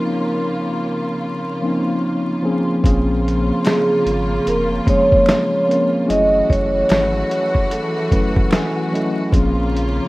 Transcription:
Already playing: string section C#3 A#3 F4, tine electric piano F3 A#3 C4 C#4 D#4 A#4, vibraphone A#4
1.62 tine electric piano F3 A#3 C4 C#4 D#4
2.42 tine electric piano F3 A#3 C4 C#4 G#4
2.83 sub bass A#1, string section C#3 A#3 F4, tine electric piano F3 A#3 C4 C#4 G#4, kick, closed hi-hat
3.28 closed hi-hat
3.65 vibraphone G#4, finger snap, snare, closed hi-hat
4.06 sub bass G#1, closed hi-hat
4.47 sub bass F1, vibraphone A#4, closed hi-hat
4.86 tine electric piano F3 G#3 A#3 C#4 G#4, vibraphone C#5, kick, closed hi-hat
5.12 kick
5.26 finger snap, snare, closed hi-hat
5.67 tine electric piano F3 A#3 C4 C#4 A#4
5.71 closed hi-hat
6.06 sub bass F#1, string section E3 A3 F#4, tine electric piano F#3 A3 C#4 E4 G#4
6.10 vibraphone D#5, closed hi-hat
6.50 sub bass F#1, vibraphone C#5, kick, closed hi-hat
6.89 sub bass G#1, finger snap, snare, closed hi-hat
7.31 closed hi-hat
7.55 kick
7.71 vibraphone A4, closed hi-hat
8.10 sub bass F#1, tine electric piano F#3 A3 C#4 E4 B4, kick, closed hi-hat
8.36 kick
8.51 tine electric piano G#5, finger snap, snare, closed hi-hat
8.76 tine electric piano F#5
8.92 tine electric piano F#3 A3 C#4 E4 A4 D#5, closed hi-hat
9.32 sub bass A#1, string section C#3 A#3 F4, tine electric piano F3 A#3 C4 C#4 G#4, kick, closed hi-hat
9.77 closed hi-hat

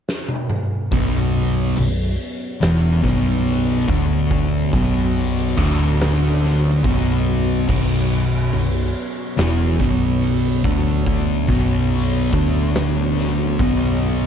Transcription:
0.09 snare
0.29 high tom
0.50 mid tom
0.92 picked electric bass B0, distorted electric guitar B1 B2, string machine B3 F#4 C#5, kick, open hi-hat
1.76 picked electric bass B0, distorted electric guitar B1, open hi-hat
2.61 picked electric bass E1, distorted electric guitar E2 E3, snare, open hi-hat
3.03 picked electric bass B0, distorted electric guitar B1 B2, kick, snare
3.47 open hi-hat
3.88 picked electric bass D1, distorted electric guitar D2 D3, kick
4.31 kick, open hi-hat
4.73 picked electric bass B0, distorted electric guitar B1 B2, kick
5.16 open hi-hat
5.57 picked electric bass D1, distorted electric guitar D2 D3, kick
6.00 snare, open hi-hat
6.44 snare
6.84 picked electric bass B0, distorted electric guitar B1 B2, kick, open hi-hat
7.68 picked electric bass B0, distorted electric guitar B1 B2, kick, crash
8.53 picked electric bass B0, distorted electric guitar B1, open hi-hat
9.37 picked electric bass E1, distorted electric guitar E2 E3, snare, open hi-hat
9.80 picked electric bass B0, distorted electric guitar B1 B2, kick, snare
10.22 open hi-hat
10.64 picked electric bass D1, distorted electric guitar D2 D3, kick
11.06 kick, open hi-hat
11.48 picked electric bass B0, distorted electric guitar B1 B2, kick
11.91 open hi-hat
12.33 picked electric bass D1, distorted electric guitar D2 D3, kick
12.75 snare, open hi-hat
13.18 snare
13.59 picked electric bass B0, distorted electric guitar B1 B2, kick, open hi-hat

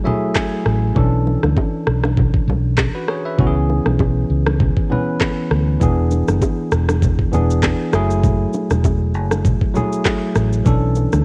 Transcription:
Already playing: tine electric piano F#3 A3 E4 G#4
0.04 tine electric piano F#3 A3 E4 G#4 E5, low bongo, low conga
0.35 tine electric piano G#5, kick, cross-stick, clap, high bongo
0.66 fingered electric bass A1, cross-stick
0.95 fingered electric bass B1, tine electric piano E3 C#4 D4 A4, kick, low conga
1.27 low bongo
1.43 fingered electric bass D2, cross-stick, low bongo
1.57 kick, high bongo
1.87 fingered electric bass B1, cross-stick
2.04 cross-stick, low bongo
2.17 kick, low conga
2.34 kick
2.48 fingered electric bass B1, low bongo, low conga
2.78 kick, cross-stick, clap, high bongo
2.95 tine electric piano F#4 B4
3.08 tine electric piano G#4 C#5, cross-stick
3.25 tine electric piano B4 E5
3.38 fingered electric bass C#2, tine electric piano E3 B3 C#4 F#4, kick, low conga
3.47 tine electric piano G#4
3.70 low bongo
3.86 fingered electric bass B1, cross-stick, low bongo
3.99 kick, high bongo
4.30 fingered electric bass C#2
4.46 cross-stick, low bongo
4.60 kick, low conga
4.77 kick
4.89 tine electric piano E3 B3 C#4 B4, low bongo, low conga
5.21 kick, cross-stick, clap, high bongo
5.51 fingered electric bass D2, cross-stick
5.80 fingered electric bass E1, tine electric piano E3 B3 D4 G#4, kick, low conga, shaker
6.11 low bongo, shaker
6.28 fingered electric bass F#1, cross-stick, low bongo, shaker
6.42 kick, high bongo, shaker
6.72 fingered electric bass E1, cross-stick, shaker
6.89 cross-stick, low bongo, shaker
7.02 kick, low conga, shaker
7.19 kick
7.32 fingered electric bass E1, tine electric piano E3 B3 D4 G#4, low bongo, low conga, shaker
7.50 shaker
7.63 kick, cross-stick, clap, high bongo, shaker
7.93 fingered electric bass F#1, tine electric piano F#3 A3 E4 G#4, cross-stick, shaker
8.10 shaker
8.24 kick, low conga, shaker
8.53 low bongo, shaker
8.70 fingered electric bass E1, cross-stick, low bongo, shaker
8.84 kick, high bongo, shaker
9.14 fingered electric bass F#1, shaker
9.31 cross-stick, low bongo, shaker
9.45 kick, low conga, shaker
9.61 kick
9.74 tine electric piano F#3 A3 E4 G#4, low bongo, low conga, shaker
9.93 shaker
10.05 kick, cross-stick, clap, high bongo, shaker
10.35 fingered electric bass A1, cross-stick, shaker
10.53 shaker
10.65 fingered electric bass B1, tine electric piano E3 C#4 D4 A4, kick, low conga, shaker
10.95 low bongo, shaker
11.12 fingered electric bass D2, cross-stick, low bongo, shaker

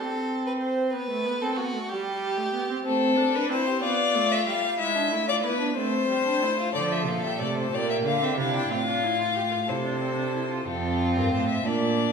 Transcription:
0.00 viola C4, violin A4
0.47 violin B4
0.62 violin C5
0.93 viola B3, violin B4
1.10 viola A3
1.26 viola B3
1.41 viola C4, violin A4
1.57 viola B3, violin F#4
1.74 viola A3
1.89 viola G3, violin G4
2.37 viola A3
2.53 viola B3
2.69 viola C4
2.85 viola A3, violin C4 A4
3.17 viola D4
3.35 violin D4 B4
3.50 viola C4, violin E4 C5
3.67 violin G4
3.82 viola B3, violin F4 D5
4.15 viola A3
4.31 violin E5
4.46 viola G3, violin F5
4.78 viola G#3, violin E4 E5
4.95 violin D4
5.11 viola A3, violin E4
5.27 violin F4 D5
5.43 viola B3, violin E4 B4
5.59 violin D4
5.76 viola A3, violin C4 C5
6.09 viola G3
6.26 violin D4
6.42 viola A3, violin E4
6.59 violin F4
6.74 cello D3, viola F3, violin A4 D5
6.92 violin E5
7.07 cello A#2, violin F5
7.24 viola G3, violin E5
7.40 cello C3, viola A3, violin D5
7.57 violin C5
7.72 cello A#2, viola A#3, violin G4 D5
7.90 violin E5
8.05 cello D3, violin F4 F5
8.22 viola C4, violin E5
8.37 cello C3, viola D4, violin E4 F5
8.56 violin G5
8.70 cello A2, viola C4, violin F4 F5
8.87 viola D4
9.03 viola E4
9.19 viola F4
9.35 viola G4
9.51 viola F4
9.68 cello C3, viola E4, violin A4 C5
9.84 viola D4
10.00 viola C4
10.17 viola D4
10.34 viola E4
10.50 viola F4
10.66 cello F2, viola C4, violin F4 A4
11.16 cello G2, violin A#4
11.32 cello A2, violin C5
11.50 violin E5
11.64 cello A#2, viola A#3, violin D4 D5

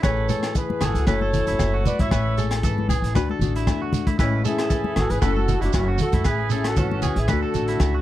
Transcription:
0.03 upright bass A1, nylon-string guitar A2 E3 G#4, horn section A4 C#5, clean electric guitar B4, muted nylon-string guitar stroke, kick, cross-stick, closed hi-hat, low agogo, shekere
0.29 nylon-string guitar G#4, clean electric guitar A4, closed hi-hat, high conga, shekere
0.43 cross-stick, closed hi-hat, low agogo, shekere
0.55 nylon-string guitar E3, horn section G#4 B4, kick, closed hi-hat, shekere
0.70 high conga
0.81 upright bass G#1, horn section F#4 A4, clean electric guitar G#4, cross-stick, closed hi-hat, low conga, low agogo, shekere
0.94 upright bass C#2, closed hi-hat, shekere
1.07 upright bass F#1, nylon-string guitar F#2 F#3 A3 C#4 E4, horn section A4 C#5, clean electric guitar B4, kick, cross-stick, closed hi-hat, low agogo, shekere
1.21 clean electric guitar A4, high conga
1.33 nylon-string guitar E4, closed hi-hat, low conga, shekere
1.47 upright bass F#1, clean electric guitar E4, closed hi-hat, shekere
1.59 upright bass F#1, nylon-string guitar F#3, kick, cross-stick, closed hi-hat, low agogo, shekere
1.74 clean electric guitar F#4
1.85 horn section B4 D5, closed hi-hat, high conga, low conga, shekere
1.99 upright bass G#1, clean electric guitar E4, horn section C#5 E5, kick, closed hi-hat, high conga, shekere
2.11 upright bass A1, nylon-string guitar A2, clean electric guitar B4, kick, cross-stick, closed hi-hat, low agogo, shekere
2.37 nylon-string guitar G#4, clean electric guitar A4, closed hi-hat, high conga, shekere
2.51 cross-stick, closed hi-hat, low agogo, shekere
2.63 upright bass G#1, nylon-string guitar E3, clean electric guitar A4, kick, closed hi-hat, shekere
2.78 high conga
2.89 upright bass C#2, clean electric guitar G#4, closed hi-hat, low conga, low agogo, shekere
3.02 upright bass A1, closed hi-hat, shekere
3.15 upright bass D2, nylon-string guitar D3 A3 D4 F#4, clean electric guitar B4, kick, cross-stick, closed hi-hat, low agogo, shekere
3.30 clean electric guitar A4, high conga
3.39 upright bass A1, nylon-string guitar F#4, closed hi-hat, low conga, shekere
3.56 clean electric guitar E4, closed hi-hat, shekere
3.66 upright bass E2, nylon-string guitar A3, kick, cross-stick, closed hi-hat, low agogo, shekere
3.82 clean electric guitar F#4
3.93 closed hi-hat, high conga, low conga, shekere
4.07 clean electric guitar E4, kick, closed hi-hat, high conga, shekere
4.19 upright bass A1, nylon-string guitar A2 E3 G#3 C#4, horn section C#4 E4, clean electric guitar B4, kick, cross-stick, closed hi-hat, low agogo, shekere
4.45 nylon-string guitar C#4, horn section E4 G#4, clean electric guitar A4, closed hi-hat, high conga, shekere
4.58 cross-stick, closed hi-hat, low agogo, shekere
4.70 nylon-string guitar E3, clean electric guitar A4, kick, closed hi-hat, shekere
4.84 high conga
4.96 upright bass G#1, horn section F#4 A4, clean electric guitar G#4, cross-stick, closed hi-hat, low conga, low agogo
5.10 upright bass G#1, horn section G#4 B4, closed hi-hat, shekere
5.21 upright bass F#1, nylon-string guitar F#2, horn section F#4 A4, clean electric guitar B4, muted nylon-string guitar stroke, kick, cross-stick, closed hi-hat, low agogo, shekere
5.25 nylon-string guitar A3 C#4 E4
5.36 clean electric guitar A4, high conga
5.48 nylon-string guitar E4, closed hi-hat, low conga, shekere
5.61 upright bass F#1, horn section D4 F#4, clean electric guitar E4, closed hi-hat, shekere
5.73 upright bass F#1, nylon-string guitar F#3, horn section C#4 F#4, kick, cross-stick, closed hi-hat, low agogo, shekere
5.88 clean electric guitar F#4
5.98 horn section F#4 A4, closed hi-hat, low conga, shekere
6.12 upright bass F#2, clean electric guitar E4, kick, closed hi-hat, high conga, shekere
6.24 upright bass A1, nylon-string guitar A2, horn section E4 G#4, clean electric guitar B4, kick, cross-stick, closed hi-hat, low agogo, shekere
6.50 nylon-string guitar C#4, clean electric guitar A4, closed hi-hat, shekere
6.64 horn section F#4 A4, cross-stick, closed hi-hat, low agogo, shekere
6.76 upright bass G#1, nylon-string guitar E3, horn section C#4 F#4, clean electric guitar A4, kick, closed hi-hat, low conga, shekere
6.91 high conga
7.02 upright bass C#2, clean electric guitar G#4, closed hi-hat, low conga, low agogo, shekere
7.16 upright bass A1, horn section E4 G#4, closed hi-hat
7.28 upright bass D2, nylon-string guitar D3 A3, horn section F#4 A4, clean electric guitar B4, muted nylon-string guitar stroke, kick, cross-stick, closed hi-hat, low agogo, shekere
7.32 nylon-string guitar F#4
7.42 clean electric guitar A4
7.54 upright bass A1, nylon-string guitar F#4, closed hi-hat, shekere
7.68 clean electric guitar E4, closed hi-hat
7.80 upright bass C#2, nylon-string guitar A3, kick, cross-stick, closed hi-hat, low agogo, shekere
7.94 clean electric guitar F#4

